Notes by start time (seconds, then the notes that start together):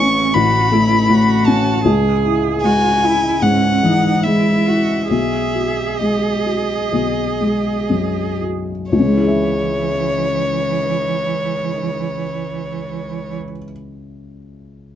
Already playing: A1 A3 C#4 C#6
0.33 A1 F#4 B5
0.71 A3 E4
1.09 A2 F#4
1.46 C#4 A5
1.85 C#2 G#4
2.25 E4
2.61 G#3 F#4 G#5
3.02 E4
3.42 G#2 C#4 F#5
3.83 E3 D#4
4.23 G#3 E4 E5
4.68 E4 F#4
5.10 B1 G#4 E5
5.55 F#4
5.99 G#3 D#5
6.46 F#4
6.92 B1
7.41 G#3
7.90 F#2
8.41 F#4
8.90 C#2 E3 C#5
8.99 C#3
9.06 G#3
9.14 E4
9.20 G#4
9.28 E5